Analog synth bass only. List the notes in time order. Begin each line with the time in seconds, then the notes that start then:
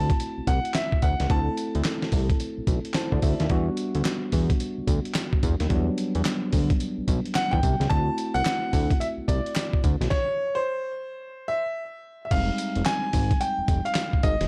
Already playing: D2
0.38 C2
0.47 C2
1.03 D2
1.20 C#2
1.30 D2
1.75 D2
2.12 C2
2.58 B1
2.67 B1
3.12 D2
3.23 D2
3.40 D#2
3.50 E2
3.95 D2
4.33 E2
4.78 D2
4.87 D2
5.43 E2
5.60 D#2
5.70 E2
6.15 E2
6.53 D2
6.98 B1
7.08 B1
7.53 E2
7.63 C2
7.80 C#2
7.91 D2
8.35 C2
8.73 D2
9.18 C2
9.28 C2
9.84 D2
10.01 B1
12.31 F1
12.76 F1
13.13 G#1
13.58 F1
13.68 F1
14.24 G#1
14.41 E1